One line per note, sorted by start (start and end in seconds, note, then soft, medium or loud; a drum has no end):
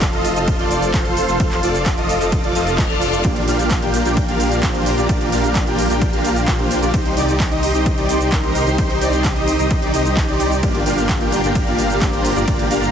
0.00 0.11 F1 loud
0.00 0.10 F4 medium
0.00 0.10 A4 medium
0.00 3.21 A4 medium
0.00 3.21 C5 medium
0.00 0.10 D5 medium
0.00 6.90 F5 medium
0.00 1.38 C6 medium
0.00 kick loud
0.00 clap loud
0.00 closed hi-hat medium
0.00 ride medium
0.00 shaker soft
0.13 0.34 F1 loud
0.13 0.33 F4 loud
0.13 0.33 A4 medium
0.13 0.33 D#5 loud
0.13 closed hi-hat soft
0.25 open hi-hat loud
0.25 shaker medium
0.36 0.57 F1 medium
0.36 0.56 F4 loud
0.36 0.56 A4 medium
0.36 0.56 D#5 loud
0.36 closed hi-hat soft
0.36 shaker soft
0.48 kick loud
0.48 closed hi-hat medium
0.48 ride medium
0.48 shaker soft
0.59 0.91 F1 loud
0.59 0.91 F4 medium
0.59 0.91 A4 medium
0.59 0.91 D5 medium
0.59 closed hi-hat soft
0.71 open hi-hat loud
0.71 shaker medium
0.82 closed hi-hat soft
0.82 shaker soft
0.94 1.26 F1 medium
0.94 1.26 F4 loud
0.94 1.26 A4 medium
0.94 1.26 C5 loud
0.94 kick loud
0.94 clap loud
0.94 closed hi-hat medium
0.94 ride medium
0.94 shaker soft
1.05 closed hi-hat soft
1.17 open hi-hat loud
1.17 shaker medium
1.28 1.38 F1 loud
1.28 1.38 F4 medium
1.28 1.38 A4 medium
1.28 1.38 C5 loud
1.28 closed hi-hat soft
1.28 shaker soft
1.40 1.61 F1 loud
1.40 1.60 F4 medium
1.40 1.60 A4 medium
1.40 1.60 C5 loud
1.40 3.23 D6 medium
1.40 kick loud
1.40 closed hi-hat medium
1.40 ride medium
1.40 shaker soft
1.51 clap soft
1.51 closed hi-hat soft
1.63 1.95 F1 loud
1.63 1.95 F4 medium
1.63 1.95 A4 medium
1.63 1.95 D5 loud
1.63 open hi-hat loud
1.63 shaker medium
1.75 closed hi-hat soft
1.75 shaker soft
1.86 kick loud
1.86 clap loud
1.86 closed hi-hat medium
1.86 ride medium
1.86 shaker soft
1.98 2.18 F1 loud
1.98 2.18 F4 loud
1.98 2.18 A4 medium
1.98 2.18 D#5 loud
1.98 closed hi-hat soft
2.09 open hi-hat loud
2.09 shaker medium
2.21 2.41 F1 medium
2.21 2.41 F4 loud
2.21 2.41 A4 medium
2.21 2.41 D#5 loud
2.21 closed hi-hat soft
2.21 shaker soft
2.32 kick loud
2.32 closed hi-hat medium
2.32 ride medium
2.32 reverse cymbal medium
2.32 shaker soft
2.44 2.53 F1 medium
2.44 2.53 F4 medium
2.44 2.53 A4 medium
2.44 2.53 D5 medium
2.44 closed hi-hat soft
2.55 2.88 F1 loud
2.55 2.87 F4 medium
2.55 2.87 A4 medium
2.55 2.87 D#5 medium
2.55 open hi-hat loud
2.55 shaker medium
2.67 closed hi-hat soft
2.67 shaker soft
2.78 kick loud
2.78 clap loud
2.78 closed hi-hat medium
2.78 ride medium
2.78 shaker soft
2.90 3.22 F1 medium
2.90 3.22 F4 medium
2.90 3.22 A4 medium
2.90 3.22 D5 loud
2.90 closed hi-hat soft
3.02 open hi-hat loud
3.02 shaker medium
3.13 closed hi-hat soft
3.13 shaker soft
3.25 3.45 A#1 loud
3.25 3.44 A#3 medium
3.25 3.44 D4 medium
3.25 3.44 F4 medium
3.25 12.91 G4 medium
3.25 3.44 G4 medium
3.25 6.90 D5 medium
3.25 3.44 D5 loud
3.25 6.90 A#5 medium
3.25 kick loud
3.25 closed hi-hat medium
3.25 ride medium
3.25 shaker soft
3.36 closed hi-hat soft
3.48 3.80 A#1 loud
3.48 3.80 A#3 medium
3.48 3.80 D4 medium
3.48 3.80 F4 medium
3.48 3.80 G4 medium
3.48 3.80 F5 loud
3.48 open hi-hat loud
3.48 shaker medium
3.59 closed hi-hat soft
3.59 shaker soft
3.71 kick loud
3.71 clap loud
3.71 closed hi-hat medium
3.71 ride medium
3.71 shaker soft
3.82 4.03 A#1 loud
3.82 4.03 A#3 loud
3.82 4.03 D4 medium
3.82 4.03 F4 medium
3.82 4.03 G4 medium
3.82 4.03 G5 loud
3.82 closed hi-hat soft
3.94 open hi-hat loud
3.94 shaker medium
4.05 4.26 A#1 medium
4.05 4.26 A#3 loud
4.05 4.26 D4 medium
4.05 4.26 F4 medium
4.05 4.26 G4 medium
4.05 4.26 G5 loud
4.05 closed hi-hat soft
4.05 shaker soft
4.17 kick loud
4.17 closed hi-hat medium
4.17 ride medium
4.17 shaker soft
4.28 4.61 A#1 loud
4.28 4.60 A#3 medium
4.28 4.60 D4 medium
4.28 4.60 F4 medium
4.28 4.60 G4 medium
4.28 4.60 F5 medium
4.28 closed hi-hat soft
4.40 open hi-hat loud
4.40 shaker medium
4.52 closed hi-hat soft
4.52 shaker soft
4.63 4.95 A#1 medium
4.63 4.95 A#3 loud
4.63 4.95 D4 medium
4.63 4.95 F4 medium
4.63 4.95 G4 medium
4.63 4.95 C5 loud
4.63 kick loud
4.63 clap loud
4.63 closed hi-hat medium
4.63 ride medium
4.63 shaker soft
4.75 closed hi-hat soft
4.86 open hi-hat loud
4.86 shaker medium
4.98 5.07 A#1 medium
4.98 5.07 A#3 medium
4.98 5.07 D4 medium
4.98 5.07 F4 medium
4.98 5.07 G4 medium
4.98 5.07 D5 loud
4.98 closed hi-hat soft
4.98 shaker soft
5.09 5.30 A#1 loud
5.09 5.29 D4 medium
5.09 5.29 G4 medium
5.09 kick loud
5.09 closed hi-hat medium
5.09 ride medium
5.09 shaker soft
5.21 closed hi-hat soft
5.32 5.65 A#1 loud
5.32 5.64 A#3 medium
5.32 5.64 D4 medium
5.32 5.64 F4 medium
5.32 5.64 G4 medium
5.32 5.64 F5 loud
5.32 open hi-hat loud
5.32 shaker medium
5.44 closed hi-hat soft
5.44 shaker soft
5.55 kick loud
5.55 clap loud
5.55 closed hi-hat medium
5.55 ride medium
5.55 shaker soft
5.67 5.88 A#1 loud
5.67 5.87 A#3 loud
5.67 5.87 D4 medium
5.67 5.87 F4 medium
5.67 5.87 G4 medium
5.67 5.87 G5 loud
5.67 closed hi-hat soft
5.79 open hi-hat loud
5.79 shaker medium
5.90 6.11 A#1 medium
5.90 6.10 A#3 medium
5.90 6.10 D4 medium
5.90 6.10 F4 medium
5.90 6.10 G4 medium
5.90 6.10 G5 loud
5.90 closed hi-hat soft
5.90 shaker soft
6.02 kick loud
6.02 closed hi-hat medium
6.02 ride medium
6.02 shaker soft
6.13 6.45 A#1 medium
6.13 6.45 A#3 medium
6.13 6.45 D4 medium
6.13 6.45 F4 medium
6.13 6.45 G4 medium
6.13 6.45 F5 medium
6.13 closed hi-hat soft
6.25 open hi-hat loud
6.25 shaker medium
6.36 closed hi-hat soft
6.36 shaker soft
6.48 6.80 A#1 loud
6.48 6.80 A#3 loud
6.48 6.80 D4 medium
6.48 6.80 F4 medium
6.48 6.80 G4 medium
6.48 6.80 C5 loud
6.48 kick loud
6.48 clap loud
6.48 closed hi-hat medium
6.48 ride medium
6.48 shaker soft
6.59 closed hi-hat soft
6.71 open hi-hat loud
6.71 shaker medium
6.82 6.91 A#1 loud
6.82 6.92 A#3 medium
6.82 6.92 D4 medium
6.82 6.92 F4 medium
6.82 6.92 G4 medium
6.82 6.92 D5 loud
6.82 closed hi-hat soft
6.82 shaker soft
6.94 7.15 C2 loud
6.94 10.59 D#4 medium
6.94 7.13 D#4 medium
6.94 7.13 G4 medium
6.94 10.59 C5 medium
6.94 7.13 C5 loud
6.94 10.59 C6 medium
6.94 kick loud
6.94 closed hi-hat medium
6.94 ride medium
6.94 shaker soft
7.05 closed hi-hat soft
7.17 7.49 C2 loud
7.17 7.49 D#4 medium
7.17 7.49 G4 medium
7.17 7.49 D5 loud
7.17 open hi-hat loud
7.17 shaker medium
7.28 closed hi-hat soft
7.28 shaker soft
7.40 kick loud
7.40 clap loud
7.40 closed hi-hat medium
7.40 ride medium
7.40 shaker soft
7.51 7.72 C2 loud
7.51 7.72 D#4 loud
7.51 7.72 G4 medium
7.51 7.72 D#5 loud
7.51 closed hi-hat soft
7.63 open hi-hat loud
7.63 shaker medium
7.74 7.95 C2 medium
7.74 7.95 D#4 medium
7.74 7.95 G4 medium
7.74 7.95 D#5 loud
7.74 closed hi-hat soft
7.74 shaker soft
7.86 kick loud
7.86 closed hi-hat medium
7.86 ride medium
7.86 shaker soft
7.98 8.30 C2 loud
7.98 8.30 D#4 medium
7.98 8.30 G4 medium
7.98 8.30 D5 medium
7.98 closed hi-hat soft
8.09 open hi-hat loud
8.09 shaker medium
8.21 closed hi-hat soft
8.21 shaker soft
8.32 8.65 C2 medium
8.32 8.64 A#4 loud
8.32 kick loud
8.32 clap loud
8.32 closed hi-hat medium
8.32 ride medium
8.44 closed hi-hat soft
8.55 open hi-hat loud
8.55 shaker medium
8.67 8.76 C2 loud
8.67 8.77 D#4 medium
8.67 8.77 G4 medium
8.67 8.77 C5 loud
8.67 closed hi-hat soft
8.67 shaker soft
8.78 8.99 C2 loud
8.78 8.98 D#4 medium
8.78 8.98 G4 medium
8.78 8.98 C5 loud
8.78 kick loud
8.78 closed hi-hat medium
8.78 ride medium
8.78 shaker soft
8.90 closed hi-hat soft
9.01 9.34 C2 loud
9.01 9.33 D#4 medium
9.01 9.33 G4 medium
9.01 9.33 D5 loud
9.01 open hi-hat loud
9.01 shaker medium
9.13 closed hi-hat soft
9.13 shaker soft
9.25 kick loud
9.25 clap loud
9.25 closed hi-hat medium
9.25 ride medium
9.25 shaker soft
9.36 9.57 C2 loud
9.36 9.56 D#4 medium
9.36 9.56 G4 medium
9.36 9.56 D#5 loud
9.36 closed hi-hat soft
9.48 open hi-hat loud
9.48 shaker medium
9.59 9.80 C2 medium
9.59 9.79 D#4 loud
9.59 9.79 G4 medium
9.59 9.79 D#5 loud
9.59 closed hi-hat soft
9.59 shaker soft
9.71 kick loud
9.71 closed hi-hat medium
9.71 ride medium
9.71 shaker soft
9.82 9.91 C2 medium
9.82 9.92 D#4 medium
9.82 9.92 G4 medium
9.82 9.91 D5 medium
9.82 closed hi-hat soft
9.94 10.26 C2 loud
9.94 10.26 D#4 medium
9.94 10.26 G4 medium
9.94 10.26 D#5 medium
9.94 open hi-hat loud
9.94 shaker medium
10.05 closed hi-hat soft
10.05 shaker soft
10.17 kick loud
10.17 clap loud
10.17 closed hi-hat medium
10.17 ride medium
10.17 shaker soft
10.28 10.61 C2 medium
10.28 10.60 D#4 medium
10.28 10.60 G4 medium
10.28 10.60 D5 loud
10.28 closed hi-hat soft
10.40 open hi-hat loud
10.40 shaker medium
10.51 closed hi-hat soft
10.51 shaker soft
10.63 10.84 G1 loud
10.63 10.83 A#3 medium
10.63 10.83 D4 medium
10.63 10.83 F4 medium
10.63 10.83 G4 medium
10.63 12.91 D5 medium
10.63 10.83 D5 loud
10.63 12.46 F5 medium
10.63 12.91 A#5 medium
10.63 kick loud
10.63 closed hi-hat medium
10.63 ride medium
10.63 shaker soft
10.75 closed hi-hat soft
10.86 11.18 G1 loud
10.86 11.18 A#3 medium
10.86 11.18 D4 medium
10.86 11.18 F4 medium
10.86 11.18 G4 medium
10.86 11.18 F5 loud
10.86 open hi-hat loud
10.86 shaker medium
10.98 closed hi-hat soft
10.98 shaker soft
11.09 kick loud
11.09 clap loud
11.09 closed hi-hat medium
11.09 ride medium
11.09 shaker soft
11.21 11.41 G1 loud
11.21 11.41 A#3 loud
11.21 11.41 D4 medium
11.21 11.41 F4 medium
11.21 11.41 G4 medium
11.21 11.41 G5 loud
11.21 closed hi-hat soft
11.32 open hi-hat loud
11.32 shaker medium
11.44 11.65 G1 medium
11.44 11.64 A#3 loud
11.44 11.64 D4 medium
11.44 11.64 F4 medium
11.44 11.64 G4 medium
11.44 11.64 G5 loud
11.44 closed hi-hat soft
11.44 shaker soft
11.55 kick loud
11.55 closed hi-hat medium
11.55 ride medium
11.55 shaker soft
11.67 11.99 G1 medium
11.67 11.99 A#3 medium
11.67 11.99 D4 medium
11.67 11.99 F4 medium
11.67 11.99 G4 medium
11.67 11.99 F5 medium
11.67 closed hi-hat soft
11.79 open hi-hat loud
11.79 shaker medium
11.90 closed hi-hat soft
11.90 shaker soft
12.01 12.34 G1 medium
12.01 12.33 A#3 loud
12.01 12.33 D4 medium
12.01 12.33 F4 medium
12.01 12.33 C5 loud
12.01 kick loud
12.01 clap loud
12.01 closed hi-hat medium
12.01 ride medium
12.01 shaker soft
12.13 closed hi-hat soft
12.25 open hi-hat loud
12.25 shaker medium
12.36 12.45 G1 medium
12.36 12.46 A#3 medium
12.36 12.46 D4 medium
12.36 12.46 F4 medium
12.36 12.46 G4 medium
12.36 12.46 D5 loud
12.36 closed hi-hat soft
12.36 shaker soft
12.48 12.68 G1 loud
12.48 12.67 A#3 medium
12.48 12.67 D4 medium
12.48 12.67 F4 medium
12.48 12.67 G4 medium
12.48 12.67 D5 loud
12.48 12.91 G5 medium
12.48 kick loud
12.48 closed hi-hat medium
12.48 ride medium
12.48 shaker soft
12.59 closed hi-hat soft
12.71 12.91 G1 loud
12.71 12.91 A#3 medium
12.71 12.91 D4 medium
12.71 12.91 F4 medium
12.71 12.91 G4 medium
12.71 12.91 F5 loud
12.71 open hi-hat loud
12.71 shaker medium
12.82 closed hi-hat soft
12.82 shaker soft